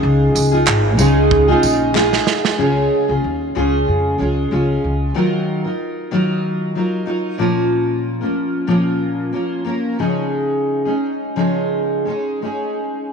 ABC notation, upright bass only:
X:1
M:4/4
L:1/16
Q:"Swing 16ths" 1/4=94
K:Db
V:1 name="Upright bass" clef=bass
D,,2 D,,2 A,,,2 D,,4 B,,,4 z2 | D,,2 z D,, E,,2 D,,2 F,,2 D,,2 D,,2 D,,2 | z16 | z16 |
z16 |]